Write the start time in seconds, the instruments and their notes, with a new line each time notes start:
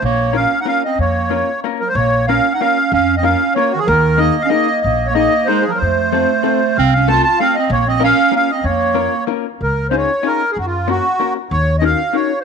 0.02 upright bass A#1, clarinet A#3, accordion C#5
0.33 hollow-body jazz guitar A#3 C#4 F4 A#4, accordion F5
0.38 clarinet C#4
0.61 clarinet D#4, accordion F#5
0.65 hollow-body jazz guitar A#3 C#4 F4 A#4, clarinet C#4, accordion F5
0.85 clarinet C4, accordion D#5
0.98 upright bass F2, clarinet A#3, accordion C#5
1.30 hollow-body jazz guitar A#3 C#4 F4 A#4
1.64 hollow-body jazz guitar A#3 C#4 F4 A#4
1.80 clarinet F#3, accordion A#4
1.88 clarinet G#3, accordion C5
1.95 upright bass A#1, clarinet A#3, accordion C#5
2.27 hollow-body jazz guitar A#3 C#4 F4 A#4, clarinet C#4, accordion F5
2.53 clarinet D#4, accordion F#5
2.60 hollow-body jazz guitar A#3 C#4 F4 A#4, clarinet C#4, accordion F5
2.92 upright bass F2, clarinet C#4, accordion F5
3.17 clarinet C4, accordion D#5
3.23 hollow-body jazz guitar A#3 C#4 F4 A#4, clarinet C#4, accordion F5
3.55 hollow-body jazz guitar A#3 C#4 F4 A#4, clarinet A#3, accordion C#5
3.71 clarinet D#3, accordion F#4
3.79 clarinet F3, accordion G#4
3.87 upright bass D#2, clarinet D#3, accordion A#4
4.18 hollow-body jazz guitar A#3 D#4 G#4 A#4, clarinet A#3, accordion D#5
4.41 clarinet C#4, accordion D#5 F5
4.47 hollow-body jazz guitar A#3 D#4, clarinet C#4, accordion D#5
4.51 clarinet A#3, hollow-body jazz guitar G#4 A#4
4.81 upright bass A#1, clarinet A#3, accordion D#5
5.06 clarinet A#3, accordion C#5
5.14 hollow-body jazz guitar A#3 D#4 G#4 A#4, accordion D#5
5.18 clarinet A#3
5.46 clarinet G#3, hollow-body jazz guitar A#3 D#4 G#4 A#4, accordion C5
5.62 accordion G#4
5.67 clarinet F3, accordion A#4
5.74 clarinet F#3, accordion C5
5.82 upright bass F2, clarinet A3
6.13 hollow-body jazz guitar A3 C4 F4 A4
6.43 hollow-body jazz guitar A3 C4 F4 A4
6.76 upright bass C2, clarinet C4, accordion F5
6.92 clarinet C#4, accordion F5
7.08 hollow-body jazz guitar A3 C4 F4 A4, clarinet F4, accordion A5
7.23 clarinet F4, accordion A5
7.39 hollow-body jazz guitar A3 C4 F4 A4, clarinet C4, accordion F5
7.55 clarinet C4, accordion D#5
7.70 upright bass A#1, clarinet A#3, accordion C#5
7.87 clarinet C4, accordion D#5
8.00 hollow-body jazz guitar A#3 C#4 F4 A#4, clarinet C#4
8.04 accordion F5
8.31 hollow-body jazz guitar A#3 C#4 F4 A#4
8.36 clarinet C#4, accordion F5
8.50 clarinet C4, accordion D#5
8.64 upright bass F2, accordion C#5
8.69 clarinet A#3
8.94 hollow-body jazz guitar A#3 C#4 F4 A#4
9.27 hollow-body jazz guitar A#3 C#4 F4 A#4
9.61 upright bass C#2, accordion A#4
9.90 hollow-body jazz guitar C#4 D#4 F4 G#4, accordion C5
9.97 accordion C#5
10.23 hollow-body jazz guitar C#4 D#4 F4 G#4, accordion A#4
10.51 accordion G#4
10.56 upright bass F#2, accordion F#4
10.66 accordion F4
10.88 hollow-body jazz guitar A#3 C#4 F#4 A#4, accordion F#4
11.20 hollow-body jazz guitar A#3 C#4 F#4 A#4
11.51 upright bass D#2, accordion C#5
11.79 hollow-body jazz guitar C#4 D#4 F#4, accordion D#5
11.83 hollow-body jazz guitar A#4, accordion F5
12.13 hollow-body jazz guitar C#4 D#4 F#4 A#4, accordion C#5
12.41 accordion C5